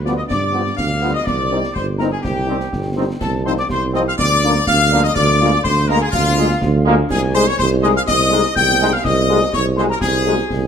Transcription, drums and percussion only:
0.06 snare
0.31 concert bass drum, snare
0.67 snare
0.78 concert bass drum, snare
1.27 concert bass drum, snare
1.63 snare
1.76 concert bass drum, snare
2.00 snare
2.25 concert bass drum, snare
2.60 snare
2.73 concert bass drum, snare
3.21 concert bass drum, snare, crash
3.57 snare
3.70 concert bass drum, snare
3.94 snare
4.19 concert bass drum, snare
4.55 snare
4.67 concert bass drum, snare
5.16 concert bass drum, snare
5.52 snare
5.65 concert bass drum, snare
5.89 snare
6.13 concert bass drum, snare
6.62 concert bass drum, snare
7.11 concert bass drum, snare, crash
7.47 snare
7.59 concert bass drum, snare
7.83 snare
8.08 concert bass drum, snare
8.44 snare
8.56 concert bass drum, snare
9.05 concert bass drum, snare
9.41 snare
9.53 concert bass drum, snare
9.78 snare
10.01 concert bass drum, snare
10.38 snare
10.50 concert bass drum, snare

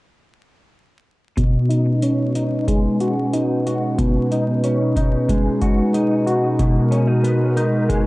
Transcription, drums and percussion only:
1.37 kick, closed hi-hat
1.71 closed hi-hat
2.02 closed hi-hat
2.35 closed hi-hat
2.68 kick, closed hi-hat
3.00 closed hi-hat
3.33 closed hi-hat
3.67 closed hi-hat
3.99 kick, closed hi-hat
4.32 closed hi-hat
4.64 closed hi-hat
4.96 kick, closed hi-hat
5.29 kick, closed hi-hat
5.62 kick, closed hi-hat
5.94 closed hi-hat
6.27 closed hi-hat
6.59 kick, closed hi-hat
6.92 closed hi-hat
7.24 closed hi-hat
7.57 closed hi-hat
7.89 kick, closed hi-hat

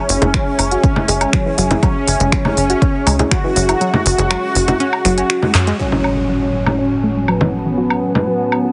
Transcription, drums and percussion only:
0.09 open hi-hat
0.22 closed hi-hat, low conga
0.34 finger snap, kick, closed hi-hat
0.59 open hi-hat, low woodblock
0.71 closed hi-hat
0.84 kick, closed hi-hat
0.96 low conga
1.08 open hi-hat
1.21 closed hi-hat, low woodblock
1.33 finger snap, kick, closed hi-hat
1.58 open hi-hat
1.71 closed hi-hat, low conga
1.83 kick, closed hi-hat, low woodblock
2.08 open hi-hat
2.20 closed hi-hat
2.32 finger snap, kick, closed hi-hat
2.45 low conga, low woodblock
2.57 open hi-hat
2.70 closed hi-hat
2.82 kick, closed hi-hat
3.07 open hi-hat, low woodblock
3.19 closed hi-hat, low conga
3.31 finger snap, kick, closed hi-hat
3.56 open hi-hat
3.69 closed hi-hat, low woodblock
3.81 closed hi-hat
3.94 low conga
4.06 open hi-hat
4.18 closed hi-hat
4.31 finger snap, closed hi-hat, low woodblock
4.55 open hi-hat
4.68 closed hi-hat, low conga
4.80 closed hi-hat
4.93 low woodblock
5.05 finger snap, open hi-hat
5.18 closed hi-hat
5.30 finger snap, closed hi-hat
5.43 low conga
5.55 clap, open hi-hat, low woodblock
5.67 closed hi-hat
5.92 low conga
6.04 low woodblock
6.66 low conga, low woodblock
7.28 low woodblock
7.41 low conga
7.90 low woodblock
8.15 low conga
8.52 low woodblock

